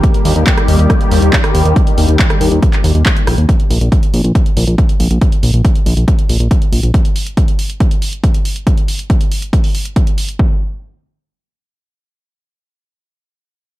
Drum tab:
HH |xxoxxxoxxxoxxxox|xxoxxxoxxxoxxxox|xxoxxxoxxxoxxxox|xxoxxxoxxxoxxxox|
CP |----x-------x---|----x----x--x---|----------------|----------------|
SD |-----r--r----r--|-----r--------r-|----------------|----------------|
BD |o---o---o---o---|o---o---o---o---|o---o---o---o---|o---o---o---o---|

HH |xxoxxxoxxxoxxxox|xxoxxxoxxooxxxox|----------------|----------------|
CP |----------------|----------------|----------------|----------------|
SD |----------------|----------------|----------------|----------------|
BD |o---o---o---o---|o---o---o---o---|o---------------|----------------|